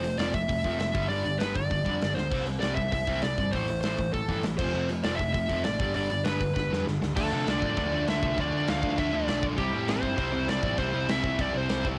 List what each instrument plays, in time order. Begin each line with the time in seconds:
Already playing: picked electric bass F1, lead electric guitar C5
0.04 overdriven electric guitar F2 C3, distorted electric guitar F3 A3, open hi-hat
0.17 picked electric bass F1, overdriven electric guitar F2 C3, distorted electric guitar F3 A3 C4, lead electric guitar D5, snare, open hi-hat
0.34 picked electric bass F1, overdriven electric guitar F2 C3, distorted electric guitar F3 A3, lead electric guitar E5, kick, open hi-hat
0.48 picked electric bass F1, overdriven electric guitar F2 C3, distorted electric guitar F3 A3, kick, open hi-hat
0.64 picked electric bass F1, overdriven electric guitar F2 C3, distorted electric guitar F3 A3 C4, kick, open hi-hat
0.79 picked electric bass F1, overdriven electric guitar F2 C3, distorted electric guitar F3 A3, lead electric guitar E5, snare, open hi-hat
0.93 picked electric bass G1, distorted electric guitar G2 D3 G3, kick, open hi-hat
1.09 picked electric bass G1, distorted electric guitar G2 D3 G3, lead electric guitar D5, open hi-hat
1.25 picked electric bass G1, distorted electric guitar G2 D3, open hi-hat
1.39 picked electric bass G1, distorted electric guitar G2 D3 G3, lead electric guitar B4, snare, open hi-hat
1.55 distorted electric guitar G2 D3, lead electric guitar D5, kick, open hi-hat
1.70 picked electric bass G1, distorted electric guitar G2 D3, kick, open hi-hat
1.85 picked electric bass F2, distorted electric guitar G2 D3 G3, kick, open hi-hat
2.01 picked electric bass G1, distorted electric guitar G2 D3, snare, open hi-hat
2.14 picked electric bass D2, distorted electric guitar G2 D3, lead electric guitar C5, snare
2.30 picked electric bass C2, distorted electric guitar C3 G3 C4, kick, crash
2.46 distorted electric guitar C3 G3, open hi-hat
2.60 picked electric bass C2, distorted electric guitar C3 G3 C4, lead electric guitar D5, snare, open hi-hat
2.75 picked electric bass C2, distorted electric guitar C3 G3, lead electric guitar E5, kick, open hi-hat
2.92 picked electric bass C2, distorted electric guitar C3 G3, lead electric guitar E5, kick, open hi-hat
3.07 picked electric bass C2, distorted electric guitar C3 G3 C4, kick
3.22 picked electric bass C2, distorted electric guitar C3 G3, lead electric guitar D5, snare, open hi-hat
3.38 picked electric bass G1, distorted electric guitar C3 G3, kick, open hi-hat
3.52 picked electric bass A1, distorted electric guitar A2 E3 A3, lead electric guitar C5, kick, open hi-hat
3.68 picked electric bass A1, distorted electric guitar A2 E3, open hi-hat
3.81 picked electric bass A1, distorted electric guitar A2 E3, lead electric guitar C5, snare, open hi-hat
3.85 distorted electric guitar A3
3.99 distorted electric guitar A2 E3, kick, open hi-hat
4.13 picked electric bass A1, distorted electric guitar A2 E3, lead electric guitar A4, kick, open hi-hat
4.28 picked electric bass G2, distorted electric guitar A2 E3 A3, kick, open hi-hat
4.43 picked electric bass A1, distorted electric guitar A2 E3, snare, open hi-hat
4.58 picked electric bass F1, overdriven electric guitar F2 C3, distorted electric guitar F3 A3 C4, lead electric guitar C5, kick, crash
4.74 picked electric bass F1, overdriven electric guitar F2 C3, distorted electric guitar F3 A3 C4
4.89 overdriven electric guitar F2 C3, distorted electric guitar F3 A3, open hi-hat
5.04 picked electric bass F1, overdriven electric guitar F2 C3, distorted electric guitar F3 A3 C4, lead electric guitar D5, snare, open hi-hat
5.16 picked electric bass F1, distorted electric guitar F3 A3, lead electric guitar E5, kick, open hi-hat
5.21 overdriven electric guitar F2 C3
5.33 picked electric bass F1, overdriven electric guitar F2 C3, distorted electric guitar F3 A3, lead electric guitar E5, kick, open hi-hat
5.49 picked electric bass F1, overdriven electric guitar F2 C3, distorted electric guitar F3 A3 C4, kick, open hi-hat
5.64 picked electric bass A1, overdriven electric guitar F2 C3, distorted electric guitar F3 A3, lead electric guitar D5, snare, open hi-hat
5.79 picked electric bass G1, distorted electric guitar G2 D3 G3, kick, open hi-hat
5.94 picked electric bass G1, distorted electric guitar G2 D3 G3, lead electric guitar D5, open hi-hat
6.10 picked electric bass G1, distorted electric guitar G2 D3, open hi-hat
6.24 picked electric bass G1, distorted electric guitar G2 D3 G3, lead electric guitar B4, snare, open hi-hat
6.40 distorted electric guitar G2 D3, kick, open hi-hat
6.54 picked electric bass G1, distorted electric guitar G2 D3, lead electric guitar B4, kick, snare
6.70 picked electric bass F2, distorted electric guitar G2 D3 G3, snare
6.86 picked electric bass G1, distorted electric guitar G2 D3, snare
7.01 picked electric bass C#2, distorted electric guitar G2 D3, snare
7.16 picked electric bass D2, distorted electric guitar D3 F3 A3 D4, lead electric guitar A4, kick, crash
7.31 picked electric bass C3, distorted electric guitar D3 F3 A3 D4
7.45 picked electric bass C2, distorted electric guitar D3 F3 A3 D4, snare, crash
7.50 lead electric guitar D5
7.62 picked electric bass A2, distorted electric guitar D3 F3 A3 D4, kick
7.77 picked electric bass D2, distorted electric guitar D3 F3 A3 D4, lead electric guitar D5, kick, crash
7.92 picked electric bass D2, distorted electric guitar D3 F3 A3 D4
8.07 picked electric bass D2, distorted electric guitar D3 F3 A3 D4, lead electric guitar E5, snare, crash
8.21 picked electric bass C2, distorted electric guitar D3 F3 A3 D4, kick
8.38 picked electric bass D2, distorted electric guitar D3 F3 A3 D4, lead electric guitar D5, kick, crash
8.51 picked electric bass D2, distorted electric guitar D3 F3 A3 D4
8.68 picked electric bass D2, distorted electric guitar D3 F3 A3 D4, lead electric guitar F5, snare, crash
8.82 picked electric bass D2, distorted electric guitar D3 F3 A3 D4, kick
8.98 picked electric bass D2, distorted electric guitar D3 F3 A3 D4, lead electric guitar E5, kick, crash
9.13 picked electric bass D2, distorted electric guitar D3 F3 A3 D4, lead electric guitar D5
9.28 picked electric bass B1, distorted electric guitar D3 F3 A3 D4, snare, crash
9.43 distorted electric guitar D3 F3 A3 D4, kick
9.57 picked electric bass C2, distorted electric guitar C3 G3 C4 E4, lead electric guitar G4, kick, crash
9.73 picked electric bass A2, distorted electric guitar C3 G3 C4 E4
9.87 picked electric bass A1, distorted electric guitar C3 G3 C4 E4, lead electric guitar C5, snare, crash
10.02 picked electric bass G2, distorted electric guitar C3 G3 C4 E4, kick
10.16 picked electric bass C2, distorted electric guitar C3 G3 C4 E4, lead electric guitar C5, kick, crash
10.32 picked electric bass C2, distorted electric guitar C3 G3 C4 E4
10.47 picked electric bass C2, distorted electric guitar C3 G3 C4 E4, lead electric guitar D5, snare, crash
10.62 picked electric bass A1, distorted electric guitar C3 G3 C4 E4, kick
10.78 picked electric bass C2, distorted electric guitar C3 G3 C4 E4, lead electric guitar C5, kick, crash
10.92 picked electric bass C2, distorted electric guitar C3 G3 C4 E4
11.08 picked electric bass C2, distorted electric guitar C3 G3 C4 E4, lead electric guitar E5, snare, crash
11.23 picked electric bass C2, distorted electric guitar C3 G3 C4 E4, kick
11.38 picked electric bass C2, distorted electric guitar C3 G3 C4 E4, lead electric guitar D5, kick, crash
11.53 picked electric bass C2, distorted electric guitar C3 G3 C4 E4
11.57 lead electric guitar C5
11.68 picked electric bass C2, distorted electric guitar C3 G3 C4 E4, snare, crash
11.84 distorted electric guitar C3 G3 C4 E4, kick